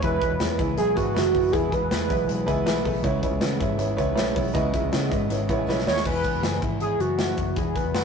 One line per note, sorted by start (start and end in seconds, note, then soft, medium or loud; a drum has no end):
0.00 0.19 E1 loud
0.00 0.20 E2 medium
0.00 0.21 B2 medium
0.00 0.21 E3 medium
0.00 0.21 G#3 medium
0.00 0.20 G#3 medium
0.00 0.39 B3 medium
0.00 0.19 B3 medium
0.00 0.58 E4 medium
0.00 0.18 E4 medium
0.00 0.17 E4 loud
0.00 0.17 G#4 medium
0.00 0.17 B4 medium
0.00 0.55 B4 loud
0.00 kick loud
0.00 closed hi-hat medium
0.19 0.39 E3 soft
0.19 0.39 G#3 soft
0.19 0.40 B3 medium
0.19 0.39 E4 soft
0.19 0.36 E4 medium
0.19 0.37 G#4 medium
0.19 0.36 C#5 medium
0.19 kick loud
0.19 closed hi-hat medium
0.30 0.38 E1 medium
0.39 0.59 E2 medium
0.39 0.56 E2 loud
0.39 0.59 B2 medium
0.39 0.59 E3 medium
0.39 0.58 G#3 medium
0.39 0.58 B3 medium
0.39 0.55 E4 medium
0.39 0.57 E4 medium
0.39 0.55 G#4 medium
0.39 0.55 C#5 medium
0.39 snare loud
0.39 closed hi-hat loud
0.58 0.75 C#2 medium
0.58 0.76 E3 medium
0.58 0.77 G#3 soft
0.58 0.78 B3 medium
0.58 0.77 E4 medium
0.58 0.73 E4 medium
0.58 0.74 G#4 medium
0.58 0.73 B4 medium
0.58 kick medium
0.58 closed hi-hat medium
0.77 0.94 B1 loud
0.77 0.96 E3 medium
0.77 0.96 G#3 medium
0.77 0.95 B3 medium
0.77 0.92 E4 medium
0.77 0.95 E4 medium
0.77 0.92 G#4 medium
0.77 0.98 G#4 loud
0.77 0.92 B4 medium
0.77 closed hi-hat loud
0.96 1.13 G#1 medium
0.96 1.14 E3 soft
0.96 1.15 G#3 soft
0.96 1.15 B3 medium
0.96 1.15 E4 medium
0.96 1.11 E4 medium
0.96 1.54 F#4 loud
0.96 1.11 G#4 medium
0.96 1.11 B4 loud
0.96 kick medium
0.96 closed hi-hat medium
1.14 1.32 F#1 medium
1.14 1.34 E2 medium
1.14 1.34 B2 medium
1.14 1.34 E3 medium
1.14 1.34 G#3 medium
1.14 1.33 B3 medium
1.14 1.30 E4 medium
1.14 1.32 E4 medium
1.14 1.30 G#4 medium
1.14 1.29 B4 loud
1.14 snare loud
1.14 closed hi-hat medium
1.34 1.51 F#1 loud
1.34 1.52 E3 soft
1.34 1.52 G#3 medium
1.34 1.52 B3 soft
1.34 1.53 E4 medium
1.34 1.49 E4 medium
1.34 1.49 G#4 medium
1.34 1.49 B4 medium
1.34 kick medium
1.34 open hi-hat medium
1.52 1.69 E1 loud
1.52 1.71 E2 medium
1.52 1.72 B2 medium
1.52 1.72 E3 medium
1.52 1.72 G#3 medium
1.52 1.71 B3 medium
1.52 1.67 E4 medium
1.52 1.69 E4 medium
1.52 1.67 G#4 medium
1.52 1.75 G#4 loud
1.52 1.67 B4 loud
1.52 kick loud
1.52 closed hi-hat medium
1.71 1.91 E3 soft
1.71 1.90 G#3 soft
1.71 1.91 B3 medium
1.71 1.90 E4 medium
1.71 1.86 E4 medium
1.71 1.86 G#4 medium
1.71 1.86 B4 medium
1.71 1.90 B4 medium
1.71 kick medium
1.71 closed hi-hat medium
1.82 1.90 E1 medium
1.90 2.10 E2 medium
1.90 2.07 E2 loud
1.90 2.10 B2 medium
1.90 2.10 E3 medium
1.90 2.09 G#3 medium
1.90 2.08 B3 medium
1.90 2.05 E4 medium
1.90 2.08 E4 medium
1.90 2.05 G#4 medium
1.90 2.05 B4 medium
1.90 2.43 B4 medium
1.90 snare loud
1.90 closed hi-hat loud
2.09 2.26 B1 medium
2.09 2.26 E3 soft
2.09 2.27 G#3 soft
2.09 2.28 B3 soft
2.09 2.28 E4 medium
2.09 2.24 E4 medium
2.09 2.24 G#4 medium
2.09 2.24 B4 medium
2.09 kick medium
2.09 closed hi-hat medium
2.27 2.45 B1 medium
2.27 2.47 E3 medium
2.27 2.47 G#3 medium
2.27 2.46 B3 medium
2.27 2.42 E4 medium
2.27 2.46 E4 medium
2.27 2.43 G#4 medium
2.27 2.42 B4 medium
2.27 closed hi-hat loud
2.46 2.66 C#2 medium
2.46 2.65 E3 soft
2.46 2.65 G#3 medium
2.46 2.66 B3 medium
2.46 2.66 E4 medium
2.46 2.62 E4 loud
2.46 2.61 G#4 loud
2.46 2.61 B4 loud
2.46 kick medium
2.46 closed hi-hat medium
2.65 2.82 B1 medium
2.65 2.85 E2 medium
2.65 2.85 B2 medium
2.65 2.85 E3 medium
2.65 2.85 G#3 medium
2.65 2.85 B3 medium
2.65 2.81 E4 loud
2.65 2.84 E4 medium
2.65 2.81 G#4 loud
2.65 2.81 B4 loud
2.65 snare loud
2.65 closed hi-hat medium
2.84 3.01 B1 loud
2.84 3.05 G#3 medium
2.84 2.93 A3 medium
2.84 3.05 B3 medium
2.84 3.04 E4 medium
2.84 3.00 E4 medium
2.84 3.00 G#4 medium
2.84 3.00 B4 loud
2.84 kick medium
2.84 open hi-hat medium
2.88 3.04 E3 medium
2.93 3.07 B3 soft
3.03 3.20 C#2 loud
3.03 3.23 C#3 medium
3.03 3.23 E3 medium
3.03 3.23 G#3 medium
3.03 3.22 B3 medium
3.03 3.18 E4 loud
3.03 3.21 E4 medium
3.03 3.18 B4 medium
3.03 3.18 C#5 loud
3.03 kick loud
3.03 closed hi-hat medium
3.22 3.40 G#3 medium
3.22 3.41 B3 medium
3.22 3.41 E4 medium
3.22 3.37 E4 medium
3.22 3.37 B4 medium
3.22 3.37 C#5 medium
3.22 kick medium
3.22 closed hi-hat medium
3.31 3.40 C#2 loud
3.41 3.60 C#3 medium
3.41 3.57 C#3 medium
3.41 3.60 E3 medium
3.41 3.60 G#3 medium
3.41 3.60 B3 medium
3.41 3.56 E4 medium
3.41 3.59 E4 medium
3.41 3.56 B4 medium
3.41 3.55 C#5 medium
3.41 snare loud
3.41 closed hi-hat loud
3.60 3.76 G#2 medium
3.60 3.78 G#3 soft
3.60 3.80 B3 medium
3.60 3.75 E4 medium
3.60 3.79 E4 medium
3.60 3.75 B4 medium
3.60 3.75 C#5 loud
3.60 kick loud
3.60 closed hi-hat medium
3.78 3.95 G#1 medium
3.78 3.98 E3 medium
3.78 3.98 G#3 medium
3.78 3.98 B3 medium
3.78 3.93 E4 medium
3.78 3.97 E4 medium
3.78 3.93 B4 medium
3.78 3.94 C#5 loud
3.78 closed hi-hat loud
3.97 4.17 C#2 medium
3.97 4.17 G#3 soft
3.97 4.17 B3 medium
3.97 4.12 E4 loud
3.97 4.17 E4 medium
3.97 4.12 B4 loud
3.97 4.12 C#5 loud
3.97 kick medium
3.97 closed hi-hat medium
4.15 4.33 B1 medium
4.15 4.36 C#3 medium
4.15 4.36 E3 medium
4.15 4.36 G#3 medium
4.15 4.37 B3 medium
4.15 4.31 E4 loud
4.15 4.31 B4 loud
4.15 4.31 C#5 loud
4.15 snare loud
4.15 closed hi-hat loud
4.19 4.35 E4 medium
4.34 4.52 B1 loud
4.34 4.55 B3 medium
4.34 4.50 E4 medium
4.34 4.55 E4 medium
4.34 4.50 B4 medium
4.34 4.50 C#5 medium
4.34 kick medium
4.34 open hi-hat medium
4.39 4.55 G#3 medium
4.54 4.71 C#2 loud
4.54 4.74 C#3 medium
4.54 4.74 E3 medium
4.54 4.74 G#3 medium
4.54 4.73 B3 medium
4.54 4.69 E4 loud
4.54 4.72 E4 medium
4.54 4.69 B4 loud
4.54 4.69 D#5 loud
4.54 kick loud
4.54 closed hi-hat medium
4.74 4.91 G#3 medium
4.74 4.92 B3 medium
4.74 4.92 E4 medium
4.74 4.88 E4 medium
4.74 4.88 B4 medium
4.74 4.88 E5 loud
4.74 kick loud
4.74 closed hi-hat medium
4.82 4.90 C#2 medium
4.92 5.11 C#3 loud
4.92 5.08 C#3 medium
4.92 5.11 E3 medium
4.92 5.11 G#3 medium
4.92 5.10 B3 medium
4.92 5.06 E4 medium
4.92 5.09 E4 loud
4.92 5.07 B4 medium
4.92 5.07 C#5 medium
4.92 snare loud
4.92 closed hi-hat loud
5.10 5.27 G#2 medium
5.10 5.29 G#3 medium
5.10 5.30 B3 medium
5.10 5.29 E4 medium
5.10 5.26 E4 medium
5.10 5.26 B4 medium
5.10 5.29 D#5 loud
5.10 kick loud
5.10 closed hi-hat medium
5.29 5.46 G#1 medium
5.29 5.48 E3 medium
5.29 5.49 G#3 medium
5.29 5.48 B3 medium
5.29 5.45 E4 medium
5.29 5.47 E4 medium
5.29 5.45 B4 medium
5.29 5.45 C#5 loud
5.29 5.57 E5 medium
5.29 closed hi-hat loud
5.48 5.65 A1 medium
5.48 5.66 G#3 medium
5.48 5.67 B3 medium
5.48 5.67 E4 medium
5.48 5.64 E4 loud
5.48 5.64 B4 loud
5.48 5.64 C#5 loud
5.48 kick medium
5.48 closed hi-hat medium
5.59 5.67 G#5 medium
5.66 5.83 B1 medium
5.66 5.86 C#3 medium
5.66 5.86 E3 medium
5.66 5.86 G#3 medium
5.66 5.86 B3 medium
5.66 5.85 E4 loud
5.66 5.83 E4 loud
5.66 5.83 B4 loud
5.66 5.83 C#5 loud
5.66 5.86 B5 medium
5.66 snare medium
5.78 snare medium
5.86 6.03 D#2 medium
5.86 6.06 G#3 soft
5.86 6.06 B3 medium
5.86 6.05 E4 medium
5.86 6.02 E4 medium
5.86 6.02 B4 medium
5.86 6.05 C#5 loud
5.86 6.02 D#5 medium
5.86 6.05 C#6 medium
5.86 snare medium
5.96 snare medium
6.05 6.21 E1 loud
6.05 7.55 E3 medium
6.05 6.41 G#4 medium
6.05 6.59 B4 loud
6.05 kick loud
6.05 crash medium
6.24 6.99 B3 medium
6.24 kick medium
6.24 closed hi-hat medium
6.34 6.42 E1 medium
6.43 6.59 F#1 medium
6.43 6.79 G#4 medium
6.43 snare loud
6.43 closed hi-hat loud
6.62 6.94 G#1 medium
6.62 7.17 E4 medium
6.62 kick loud
6.62 closed hi-hat medium
6.80 7.55 G#4 medium
6.80 7.02 G#4 loud
6.80 closed hi-hat medium
6.99 7.31 F#1 medium
6.99 7.37 B3 medium
6.99 7.59 F#4 loud
6.99 closed hi-hat medium
7.18 8.04 E4 medium
7.18 snare loud
7.18 closed hi-hat medium
7.37 7.54 F#1 medium
7.37 7.74 B3 medium
7.37 kick medium
7.37 closed hi-hat medium
7.56 7.73 E1 loud
7.56 8.04 E3 medium
7.56 7.93 G#4 medium
7.56 7.77 G#4 medium
7.56 kick loud
7.56 closed hi-hat medium
7.74 8.04 B3 medium
7.74 7.95 B4 medium
7.74 kick medium
7.74 closed hi-hat medium
7.85 7.95 E1 medium
7.94 8.04 F#1 medium
7.94 8.03 F#4 medium
7.94 8.04 B4 medium
7.94 snare loud
7.94 closed hi-hat loud